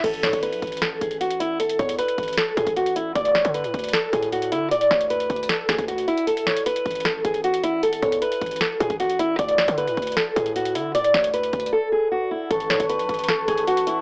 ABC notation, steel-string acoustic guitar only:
X:1
M:4/4
L:1/8
Q:1/4=154
K:A
V:1 name="Steel-string acoustic guitar"
A c B2 A G F E | A c B2 A G F E | d c B2 A G F E | d c B2 A G F E |
A c B2 A G F E | A c B2 A G F E | d c B2 A G F E | d c B2 A G F E |
A c B2 A G F E |]